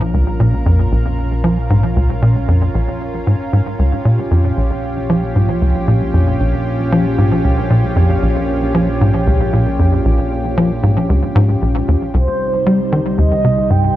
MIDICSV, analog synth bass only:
0, 0, Header, 1, 2, 480
1, 0, Start_track
1, 0, Tempo, 521739
1, 1570, Time_signature, 4, 2, 24, 8
1, 12845, End_track
2, 0, Start_track
2, 0, Title_t, "Analog synth bass"
2, 0, Program_c, 0, 38
2, 128, Note_on_c, 0, 37, 75
2, 255, Note_off_c, 0, 37, 0
2, 366, Note_on_c, 0, 46, 72
2, 494, Note_off_c, 0, 46, 0
2, 606, Note_on_c, 0, 41, 83
2, 798, Note_off_c, 0, 41, 0
2, 845, Note_on_c, 0, 34, 75
2, 974, Note_off_c, 0, 34, 0
2, 1324, Note_on_c, 0, 53, 70
2, 1453, Note_off_c, 0, 53, 0
2, 1566, Note_on_c, 0, 44, 83
2, 1694, Note_off_c, 0, 44, 0
2, 1806, Note_on_c, 0, 37, 73
2, 1934, Note_off_c, 0, 37, 0
2, 2045, Note_on_c, 0, 46, 72
2, 2174, Note_off_c, 0, 46, 0
2, 2284, Note_on_c, 0, 41, 73
2, 2477, Note_off_c, 0, 41, 0
2, 2525, Note_on_c, 0, 34, 77
2, 2654, Note_off_c, 0, 34, 0
2, 3007, Note_on_c, 0, 44, 67
2, 3084, Note_off_c, 0, 44, 0
2, 3247, Note_on_c, 0, 44, 72
2, 3324, Note_off_c, 0, 44, 0
2, 3488, Note_on_c, 0, 37, 77
2, 3615, Note_off_c, 0, 37, 0
2, 3727, Note_on_c, 0, 46, 74
2, 3855, Note_off_c, 0, 46, 0
2, 3966, Note_on_c, 0, 41, 76
2, 4158, Note_off_c, 0, 41, 0
2, 4205, Note_on_c, 0, 34, 71
2, 4334, Note_off_c, 0, 34, 0
2, 4689, Note_on_c, 0, 53, 75
2, 4816, Note_off_c, 0, 53, 0
2, 4928, Note_on_c, 0, 44, 70
2, 5055, Note_off_c, 0, 44, 0
2, 5166, Note_on_c, 0, 37, 76
2, 5295, Note_off_c, 0, 37, 0
2, 5408, Note_on_c, 0, 46, 78
2, 5535, Note_off_c, 0, 46, 0
2, 5646, Note_on_c, 0, 41, 73
2, 5837, Note_off_c, 0, 41, 0
2, 5888, Note_on_c, 0, 34, 72
2, 6016, Note_off_c, 0, 34, 0
2, 6369, Note_on_c, 0, 53, 81
2, 6496, Note_off_c, 0, 53, 0
2, 6608, Note_on_c, 0, 44, 71
2, 6735, Note_off_c, 0, 44, 0
2, 6846, Note_on_c, 0, 37, 68
2, 6975, Note_off_c, 0, 37, 0
2, 7087, Note_on_c, 0, 46, 73
2, 7215, Note_off_c, 0, 46, 0
2, 7325, Note_on_c, 0, 41, 82
2, 7517, Note_off_c, 0, 41, 0
2, 7566, Note_on_c, 0, 34, 76
2, 7694, Note_off_c, 0, 34, 0
2, 8046, Note_on_c, 0, 53, 73
2, 8174, Note_off_c, 0, 53, 0
2, 8290, Note_on_c, 0, 44, 78
2, 8416, Note_off_c, 0, 44, 0
2, 8526, Note_on_c, 0, 37, 73
2, 8655, Note_off_c, 0, 37, 0
2, 8770, Note_on_c, 0, 46, 68
2, 8896, Note_off_c, 0, 46, 0
2, 9007, Note_on_c, 0, 41, 71
2, 9198, Note_off_c, 0, 41, 0
2, 9247, Note_on_c, 0, 34, 78
2, 9375, Note_off_c, 0, 34, 0
2, 9729, Note_on_c, 0, 53, 75
2, 9856, Note_off_c, 0, 53, 0
2, 9965, Note_on_c, 0, 44, 73
2, 10094, Note_off_c, 0, 44, 0
2, 10206, Note_on_c, 0, 37, 79
2, 10334, Note_off_c, 0, 37, 0
2, 10446, Note_on_c, 0, 44, 100
2, 10637, Note_off_c, 0, 44, 0
2, 10690, Note_on_c, 0, 34, 65
2, 10880, Note_off_c, 0, 34, 0
2, 10932, Note_on_c, 0, 39, 72
2, 11007, Note_off_c, 0, 39, 0
2, 11168, Note_on_c, 0, 36, 81
2, 11295, Note_off_c, 0, 36, 0
2, 11652, Note_on_c, 0, 55, 71
2, 11777, Note_off_c, 0, 55, 0
2, 11890, Note_on_c, 0, 51, 73
2, 11966, Note_off_c, 0, 51, 0
2, 12127, Note_on_c, 0, 39, 79
2, 12255, Note_off_c, 0, 39, 0
2, 12369, Note_on_c, 0, 48, 73
2, 12496, Note_off_c, 0, 48, 0
2, 12606, Note_on_c, 0, 43, 69
2, 12797, Note_off_c, 0, 43, 0
2, 12845, End_track
0, 0, End_of_file